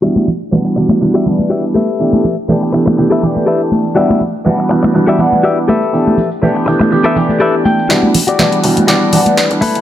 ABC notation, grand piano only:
X:1
M:4/4
L:1/8
Q:"Swing 16ths" 1/4=122
K:Em
V:1 name="Grand piano"
[E,G,B,DF] z [E,G,B,DF] [E,G,B,DF] [E,G,B,DF] [E,G,B,D]2 z | [E,A,B,DG] z [E,A,B,DG] [E,A,B,DG] [E,A,B,DG] [E,A,B,DG]3 | [E,G,B,DF] z [E,G,B,DF] [E,G,B,DF] [E,G,B,DF] [E,G,B,Df]2 z | [E,A,B,DG] z [E,A,B,DG] [E,A,B,DG] [E,A,B,DG] [E,A,B,DG]3 |
[E,G,B,DF] z [E,G,B,DF] [E,G,B,DF] [E,G,B,DF] [E,G,B,Df]2 z |]